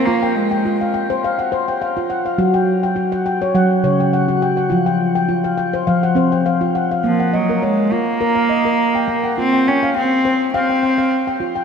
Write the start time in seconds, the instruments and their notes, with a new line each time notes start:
Already playing: handpan A#4 C5
0.06 cello A#3, handpan F4
0.22 handpan G5
0.35 cello G#3
0.51 handpan G5
0.65 handpan F4
0.81 handpan F5
0.94 handpan G5
1.10 handpan C5
1.24 handpan F5
1.39 handpan F#5
1.52 handpan C5
1.68 handpan G5
1.82 handpan F5
1.97 handpan F4
2.10 handpan F#5
2.26 handpan F5
2.38 handpan F#3 F#4
2.54 handpan G5
2.83 handpan G5
2.96 handpan F#4
3.12 handpan F#5
3.26 handpan G5
3.42 handpan C#5
3.55 handpan F#3 F#5
3.84 handpan C#3 C#5
4.00 handpan G5
4.13 handpan F#5
4.28 handpan F#4
4.42 handpan G5
4.57 handpan F#5
4.70 handpan F3 F4
4.86 handpan G5
5.15 handpan G5
5.29 handpan F4
5.44 handpan F5
5.58 handpan G5
5.74 handpan C5
5.87 handpan F3 F5
6.03 handpan F#5
6.15 handpan C4 C5
6.32 handpan G5
6.46 handpan F5
6.61 handpan F4
6.75 handpan F#5
6.91 handpan F5
7.04 cello F3, handpan A#3
7.20 handpan F#5
7.33 cello F#3, handpan D#5
7.49 handpan A#4
7.63 cello G#3, handpan C#5
7.92 cello A#3, handpan F4
8.21 handpan A#4
8.35 handpan F5
8.49 handpan D#5
8.65 handpan A#4
8.95 handpan G5
9.08 handpan A#3
9.24 handpan F#5
9.38 cello C4, handpan F4
9.53 handpan G5
9.67 cello C#4, handpan G5
9.83 handpan F5
9.96 cello C4, handpan G5
10.25 handpan C5
10.54 cello C4, handpan F5 G5
10.70 handpan G5
10.83 handpan G5
10.98 handpan F5
11.27 handpan G5
11.40 handpan F4
11.56 handpan G5